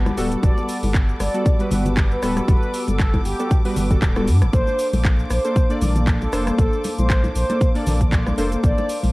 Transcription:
Already playing: sub bass G1, synth keys G3 B3 F#4 B4, analog synth pad F#5 A5 B5 D6, violin section D6
0.06 cross-stick, high conga, cabasa
0.17 sub bass D1, synth keys G3 B3 F#4 A4, open hi-hat, cabasa
0.31 closed hi-hat, muted conga, cabasa
0.42 sub bass G1, synth keys G3 B3 F#4 A4, soft synth lead D5, analog synth pad E6, kick, closed hi-hat, cabasa
0.57 muted conga, cabasa
0.69 open hi-hat, cabasa
0.83 sub bass G1, open hi-hat, high conga, cabasa
0.94 kick, clap, closed hi-hat, muted conga, cabasa
1.09 cabasa
1.20 sub bass G1, soft synth lead D5, cross-stick, open hi-hat, muted conga, cabasa
1.34 synth keys G3 B3 F#4 A4, closed hi-hat, cabasa
1.46 kick, closed hi-hat, cabasa
1.59 synth keys G3 B3 F#4 B4, closed hi-hat, muted conga, cabasa
1.71 sub bass G1, open hi-hat, high conga, low conga, cabasa
1.85 closed hi-hat, muted conga, low conga, cabasa
1.97 kick, clap, closed hi-hat, cabasa
2.11 soft synth lead B4, cabasa
2.22 sub bass D1, synth keys G3 B3 F#4 A4, cross-stick, open hi-hat, muted conga, cabasa
2.36 cross-stick, closed hi-hat, high conga, cabasa
2.48 sub bass G1, synth keys G3 B3 F#4 A4, soft synth lead B4, kick, closed hi-hat, muted conga, cabasa
2.63 cabasa
2.74 open hi-hat, cabasa
2.88 sub bass G1, soft synth lead A4, closed hi-hat, muted conga, high conga, cabasa
3.00 kick, clap, closed hi-hat, cabasa
3.14 kick, muted conga, high conga, cabasa
3.25 sub bass G1, soft synth lead G4, open hi-hat, cabasa
3.39 synth keys G3 B3 F#4 A4, closed hi-hat, cabasa
3.50 kick, closed hi-hat, muted conga, cabasa
3.65 synth keys G3 B3 F#4 B4, open hi-hat, cabasa
3.76 sub bass G1, open hi-hat, muted conga, low conga, cabasa
3.90 synth keys G3 B3 F#4 A4, kick, closed hi-hat, low conga, cabasa
4.02 sub bass D1, kick, clap, closed hi-hat, cabasa
4.16 synth keys G3 B3 F#4 A4, cross-stick, muted conga, high conga, cabasa
4.28 sub bass G2, open hi-hat, cabasa
4.42 sub bass G1, cross-stick, closed hi-hat, muted conga, cabasa
4.53 sub bass A#1, synth keys A#3 D4 A4 C5, soft synth lead C5, analog synth pad F5 A5 C6 D6, kick, closed hi-hat, cabasa
4.67 muted conga, cabasa
4.79 open hi-hat, cabasa
4.93 sub bass A#1, open hi-hat, muted conga, high conga, cabasa
5.05 kick, clap, closed hi-hat, cabasa
5.19 cabasa
5.30 sub bass A#1, soft synth lead C5, cross-stick, open hi-hat, muted conga, cabasa
5.44 synth keys A#3 D4 A4 C5, closed hi-hat, cabasa
5.56 kick, closed hi-hat, muted conga, cabasa
5.69 synth keys A#3 D4 A4 D5, closed hi-hat, cabasa
5.82 sub bass A#1, open hi-hat, high conga, low conga, cabasa
5.95 closed hi-hat, muted conga, low conga, cabasa
6.07 kick, clap, closed hi-hat, cabasa
6.21 soft synth lead A4, muted conga, cabasa
6.33 sub bass F1, synth keys A#3 D4 A4 C5, cross-stick, open hi-hat, cabasa
6.47 cross-stick, closed hi-hat, high conga, cabasa
6.58 sub bass A#1, synth keys A#3 D4 A4 C5, soft synth lead A4, kick, closed hi-hat, muted conga, cabasa
6.73 cabasa
6.84 open hi-hat, muted conga, cabasa
6.98 sub bass A#1, soft synth lead C5, closed hi-hat, high conga, cabasa
7.10 kick, clap, closed hi-hat, cabasa
7.24 muted conga, high conga, cabasa
7.35 sub bass A#1, soft synth lead C5, open hi-hat, cabasa
7.49 synth keys A#3 D4 A4 C5, closed hi-hat, muted conga, cabasa
7.61 kick, closed hi-hat, cabasa
7.75 synth keys A#3 D4 A4 D5, open hi-hat, cabasa
7.87 sub bass A#1, open hi-hat, muted conga, low conga, cabasa
8.01 kick, closed hi-hat, low conga, cabasa
8.12 kick, clap, closed hi-hat, muted conga, cabasa
8.26 cross-stick, high conga, cabasa
8.38 sub bass F1, synth keys A#3 D4 A4 C5, open hi-hat, cabasa
8.52 closed hi-hat, muted conga, cabasa
8.63 sub bass A#1, synth keys A#3 D4 A4 C5, soft synth lead D5, kick, closed hi-hat, cabasa
8.78 muted conga, cabasa
8.89 open hi-hat, cabasa
9.03 sub bass A#1, open hi-hat, high conga, cabasa

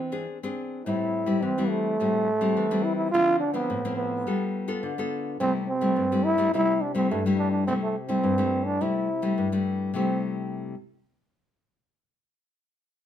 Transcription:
Already playing: nylon-string guitar E3, trombone C4
0.12 nylon-string guitar C4 D4 G#4
0.43 nylon-string guitar C4 D4 G#4
0.86 nylon-string guitar A2 G3 C4 E4, trombone E4
1.26 nylon-string guitar G3 C4 E4
1.42 nylon-string guitar E3, trombone C4
1.58 nylon-string guitar G3 C4 E4
1.69 trombone A3
2.00 nylon-string guitar A2 G3 C4 E4
2.41 nylon-string guitar G3 C4 E4
2.57 nylon-string guitar E3
2.71 nylon-string guitar G3 C4 E4
2.83 trombone E4
2.96 trombone E4
3.11 nylon-string guitar D3 F3 C4 E4, trombone F4
3.40 trombone D4
3.53 nylon-string guitar F3 C4 E4, trombone B3
3.70 nylon-string guitar A2
3.85 nylon-string guitar F3 C4 E4
3.96 trombone B3
4.27 nylon-string guitar G3 B3 F4 A4
4.68 nylon-string guitar B3 F4 A4
4.83 nylon-string guitar D3
4.98 nylon-string guitar B3 F4 A4
5.40 nylon-string guitar C3 G3 A3 E4, trombone C4
5.68 trombone C4
5.81 nylon-string guitar G3 A3 E4
5.96 nylon-string guitar G2
6.12 nylon-string guitar G3 A3 E4
6.24 trombone E4
6.38 nylon-string guitar G3 A3 E4
6.54 nylon-string guitar C3 G3 A3 E4, trombone E4
6.81 trombone D4
6.94 nylon-string guitar G3 A3 E4, trombone C4
7.11 nylon-string guitar G2, trombone A3
7.26 nylon-string guitar G3 A3 E4
7.38 trombone D4
7.51 trombone D4
7.67 nylon-string guitar C3 G3 A3 E4, trombone C4
7.83 trombone A3
8.08 nylon-string guitar G3 A3 E4, trombone C4
8.23 nylon-string guitar G2
8.38 nylon-string guitar G3 A3 E4
8.66 trombone D4
8.81 nylon-string guitar C3 G3 A3 E4, trombone E4
9.22 nylon-string guitar G3 A3 E4
9.38 nylon-string guitar G2
9.52 nylon-string guitar G3 A3 E4
9.94 nylon-string guitar C3 G3 A3 E4, trombone C4

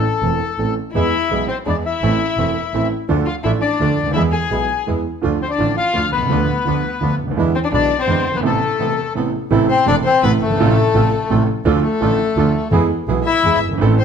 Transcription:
Already playing: bandoneon A4
0.22 double bass E1, grand piano E1 E2 E3 A3 C4 A4
0.58 double bass A1, grand piano A1 A2 E3 A3 C4 A4
0.93 double bass E2, grand piano E2 E3 G#3 B3 G#4, bandoneon G#3 B3 E4 E5, violin E4
1.30 double bass B1, grand piano B1 B2 E3 G#3 B3 G#4, bandoneon G#3 B3 E4
1.48 violin C4, bandoneon C5
1.66 grand piano E2 E3 G#3 B3 G#4, double bass E2, bandoneon G#3 B3 E4 D5, violin D4
1.83 violin E4, bandoneon E5
2.01 double bass A1, grand piano A1 A2 E3 A3 C4 A4, bandoneon A3 C4 E4
2.37 double bass E1, grand piano E1 E2 E3 A3 C4 A4, bandoneon A3 C4 E4
2.73 double bass A1, grand piano A1 A2 E3 A3 C4 A4, bandoneon A3 C4 E4
3.08 double bass D2, grand piano D2 D3 F3 A3 D4 A4, bandoneon A3 D4 F4
3.26 violin F4, bandoneon F5
3.43 double bass A1, grand piano A1 A2 F3 A3 D4 A4, bandoneon A3 D4 F4 E5, violin E4
3.60 violin D4, bandoneon D5
3.79 double bass D2, grand piano D2 D3 F3 A3 D4 A4, bandoneon A3 D4 F4
3.97 double bass D2
4.03 grand piano C#2
4.07 grand piano D2
4.11 grand piano D#2, double bass E2, violin E4, bandoneon E5
4.15 grand piano E2 E3 G#3 B3 G#4, bandoneon G#3 B3 E4
4.31 violin G#4, bandoneon G#5
4.50 grand piano B1 B2 E3 G#3 B3 G#4, double bass B1, bandoneon G#3 B3 E4
4.87 grand piano E2 E3 G#3 B3 G#4, double bass E2, bandoneon G#3 B3 E4
5.22 grand piano D2 D3 F3 A3 F4, double bass D2, bandoneon A3 D4 F4
5.42 violin C4, bandoneon C5
5.50 violin D4, bandoneon D5
5.58 grand piano A1 A2 D3 F3 A3 F4, double bass A1, bandoneon A3 D4 F4
5.77 violin F4, bandoneon F5
5.93 grand piano D2 D3 F3 A3 F4, double bass D2, bandoneon A3 D4 F4
6.12 double bass C2, violin B3, bandoneon B4
6.17 grand piano B1
6.22 grand piano C2 C#2
6.30 grand piano D2 D3 F3 B3 F4, double bass D2, bandoneon B3 D4 F4
6.65 grand piano D2 D3 F3 B3 F4, double bass D2, bandoneon B3 D4 F4
7.01 grand piano D2 D3 F3 B3 F4, double bass D2, bandoneon B3 D4 F4
7.19 double bass D2
7.23 grand piano C#2
7.28 grand piano D2 D#2
7.36 double bass E2, grand piano E2 D3 E3 G#3 B3 E4, bandoneon G#3 D4 E4
7.55 violin C4, bandoneon C5
7.64 violin D4, bandoneon D5
7.72 double bass B1, grand piano B1 B2 D3 G#3 B3 E4, bandoneon G#3 D4 E4 D5, violin D4
7.99 violin C4, bandoneon C5
8.07 double bass E2, grand piano E2 D3 E3 G#3 B3 E4, bandoneon G#3 D4 E4
8.31 grand piano F#1
8.35 grand piano G1, violin B3, bandoneon B4
8.40 grand piano G#1 A1 A2 C3 A3 B3 E4
8.44 violin A3, bandoneon B3 C4 A4
8.79 grand piano E1 E2 C3 A3 B3 E4, bandoneon B3 C4 A4
9.15 grand piano A1 A2 C3 A3 B3 E4, bandoneon B3 C4 A4
9.50 grand piano A1 A2 C3 E3 A3 E4, double bass A1, bandoneon C4 E4 A4
9.69 bandoneon C4, violin C5
9.86 grand piano E1 E2 C3 E3 A3 E4, double bass E1, bandoneon C4 D4 E4 A4, violin D5
10.04 bandoneon C4, violin C5
10.23 double bass A1, grand piano A1 A2 C3 E3 A3 E4, bandoneon B3 C4 E4 A4, violin B4
10.41 double bass G1, bandoneon A3, violin A4
10.47 grand piano F#1
10.51 grand piano G1
10.56 grand piano G#1 F3, double bass A1, bandoneon C4 F4 A4
10.60 grand piano A1 A2 C3 A3 F4
10.94 grand piano A1 A2 C3 F3 A3 F4, double bass A1, bandoneon C4 F4 A4
11.30 grand piano A1 A2 C3 F3 A3 F4, double bass A1, bandoneon C4 F4 A4
11.65 double bass D2, grand piano D2 D3 F3 A3 F4, bandoneon D4 F4 A4
11.83 bandoneon A3, violin A4
12.01 double bass A1, grand piano A1 A2 D3 F3 A3 F4, bandoneon D4 F4 A4
12.36 double bass D2, grand piano D2 D3 F3 A3 F4, bandoneon D4 F4 A4
12.71 double bass E2, grand piano E2 E3 G#3 B3 G#4, bandoneon B3 E4 G#4
13.07 double bass B1, grand piano B1 B2 E3 G#3 B3 G#4, bandoneon B3 E4 G#4
13.25 bandoneon E4, violin E5
13.43 double bass E2, grand piano E2 E3 G#3 B3 G#4, bandoneon B3 E4 G#4
13.61 double bass G1
13.68 grand piano F#1
13.73 grand piano G1
13.78 grand piano G#1 A2 E3 C4, double bass A1, bandoneon C4 E4 A4
13.82 grand piano A1 A3 A4
13.99 bandoneon C4, violin C5

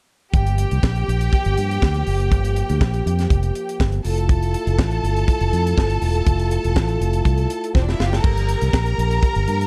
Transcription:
0.33 fingered electric bass G1, french horn section F3 A#3 G4, string section G4 G5, kick, closed hi-hat
0.47 closed hi-hat
0.58 closed hi-hat
0.71 fingered electric bass C2, closed hi-hat
0.83 fingered electric bass A#1, kick, snare
0.96 closed hi-hat
1.08 fingered electric bass A#1, closed hi-hat
1.21 closed hi-hat
1.33 kick, closed hi-hat
1.45 fingered electric bass G1, closed hi-hat
1.58 fingered electric bass G2, closed hi-hat
1.71 closed hi-hat
1.82 fingered electric bass D2, kick, snare
1.94 closed hi-hat
2.07 fingered electric bass F#1, open hi-hat
2.20 closed hi-hat
2.32 fingered electric bass G1, kick, closed hi-hat
2.45 closed hi-hat
2.56 closed hi-hat
2.69 fingered electric bass D2, closed hi-hat
2.81 fingered electric bass A#1, kick, snare
2.94 closed hi-hat
3.06 fingered electric bass F2, closed hi-hat
3.19 snare, closed hi-hat
3.30 fingered electric bass F1, kick, closed hi-hat
3.43 closed hi-hat
3.55 closed hi-hat
3.69 closed hi-hat
3.80 fingered electric bass G1, kick, snare
3.92 closed hi-hat
4.04 fingered electric bass F1, french horn section A3 E4 F4, string section A4 A5, open hi-hat
4.18 closed hi-hat
4.29 kick, closed hi-hat
4.43 closed hi-hat
4.54 closed hi-hat
4.67 fingered electric bass F1, closed hi-hat
4.79 fingered electric bass A1, kick, snare
4.91 closed hi-hat
5.03 fingered electric bass G1, closed hi-hat
5.17 closed hi-hat
5.28 kick, closed hi-hat
5.41 fingered electric bass F1, closed hi-hat
5.53 fingered electric bass F2, closed hi-hat
5.67 closed hi-hat
5.78 fingered electric bass G1, kick, snare
5.90 closed hi-hat
6.02 fingered electric bass E1, open hi-hat
6.15 closed hi-hat
6.26 fingered electric bass F1, kick, closed hi-hat
6.40 closed hi-hat
6.51 closed hi-hat
6.64 fingered electric bass E1, closed hi-hat
6.76 fingered electric bass A1, kick, snare
6.88 closed hi-hat
7.01 fingered electric bass F1, closed hi-hat
7.13 closed hi-hat
7.25 fingered electric bass C2, kick, closed hi-hat
7.38 closed hi-hat
7.50 closed hi-hat
7.64 closed hi-hat
7.75 fingered electric bass E1, string section C4 C5, kick, snare
7.83 string section D4 D5
7.89 string section E4 E5, snare
7.99 fingered electric bass F#1, string section F4 F5, snare
8.07 string section G4 G5
8.13 string section A4 A5, snare
8.24 fingered electric bass G1, french horn section F3 A#3 G4, string section A#4 A#5, kick, crash
8.37 closed hi-hat
8.49 closed hi-hat
8.61 fingered electric bass C2, closed hi-hat
8.73 fingered electric bass A#1, kick, snare
8.86 closed hi-hat
8.98 fingered electric bass A#1, closed hi-hat
9.11 closed hi-hat
9.23 kick, closed hi-hat
9.35 fingered electric bass G1, closed hi-hat
9.48 fingered electric bass G2, closed hi-hat
9.61 closed hi-hat

